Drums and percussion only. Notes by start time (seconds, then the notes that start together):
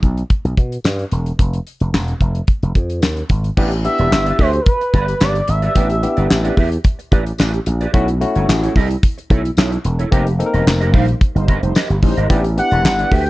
0.03 kick, closed hi-hat
0.17 closed hi-hat
0.30 kick, closed hi-hat
0.45 closed hi-hat
0.57 kick, closed hi-hat
0.72 closed hi-hat
0.84 snare, clap, tambourine
0.99 closed hi-hat
1.11 closed hi-hat
1.26 closed hi-hat
1.39 kick, closed hi-hat
1.53 closed hi-hat
1.67 closed hi-hat
1.80 closed hi-hat
1.94 snare, clap, tambourine
2.08 closed hi-hat
2.20 kick, closed hi-hat
2.35 closed hi-hat
2.47 kick, closed hi-hat
2.63 closed hi-hat
2.75 kick, closed hi-hat
2.90 closed hi-hat
3.02 snare, clap, tambourine
3.17 closed hi-hat
3.29 kick, closed hi-hat
3.44 closed hi-hat
3.57 kick, crash
3.71 closed hi-hat
3.85 closed hi-hat
3.98 closed hi-hat
4.12 snare, clap, tambourine
4.26 closed hi-hat
4.39 kick, open hi-hat
4.53 closed hi-hat
4.66 kick, closed hi-hat
4.81 closed hi-hat
4.94 kick, closed hi-hat
5.08 closed hi-hat
5.20 snare, clap, tambourine
5.35 closed hi-hat
5.48 closed hi-hat
5.62 closed hi-hat
5.75 kick, closed hi-hat
5.90 closed hi-hat
6.03 closed hi-hat
6.17 closed hi-hat
6.31 snare, clap, tambourine
6.45 closed hi-hat
6.57 kick, open hi-hat
6.72 closed hi-hat
6.84 kick, closed hi-hat
6.99 closed hi-hat
7.12 kick, closed hi-hat
7.26 closed hi-hat
7.38 snare, clap, tambourine
7.54 closed hi-hat
7.66 closed hi-hat
7.81 closed hi-hat
7.94 kick, closed hi-hat
8.08 closed hi-hat
8.21 closed hi-hat
8.35 closed hi-hat
8.49 snare, clap, tambourine
8.63 closed hi-hat
8.76 kick, open hi-hat
8.91 closed hi-hat
9.03 kick, closed hi-hat
9.18 closed hi-hat
9.30 kick, closed hi-hat
9.45 closed hi-hat
9.57 snare, clap, tambourine
9.72 closed hi-hat
9.85 closed hi-hat
9.99 closed hi-hat
10.12 kick, closed hi-hat
10.27 closed hi-hat
10.40 closed hi-hat
10.54 closed hi-hat
10.67 snare, clap, tambourine
10.81 closed hi-hat
10.94 kick, open hi-hat
11.08 closed hi-hat
11.21 kick, closed hi-hat
11.36 closed hi-hat
11.48 kick, closed hi-hat
11.63 closed hi-hat
11.75 snare, clap, tambourine
11.90 closed hi-hat
12.02 kick, open hi-hat
12.17 closed hi-hat
12.30 kick, closed hi-hat
12.44 closed hi-hat
12.58 closed hi-hat
12.71 closed hi-hat
12.85 snare, clap, tambourine
12.99 closed hi-hat
13.12 kick, open hi-hat
13.26 closed hi-hat